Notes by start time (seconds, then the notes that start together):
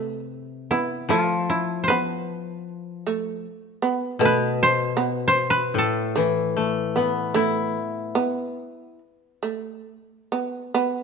Already playing: C3 A3 B4
0.71 B3 E4
1.09 F3 A3 F4
1.50 E4
1.84 C5
1.88 B3 B4
3.07 A3
3.82 B3
4.19 B2 A3
4.25 B4
4.63 C5
4.97 B3
5.28 C5
5.50 B4
5.74 A2
5.78 A4
6.16 E3 A3
6.57 A3
6.96 B3
7.34 A3 E4
7.74 G#4
7.99 G4
8.15 B3
8.25 F#4
8.50 F4
9.43 A3
10.32 B3
10.74 B3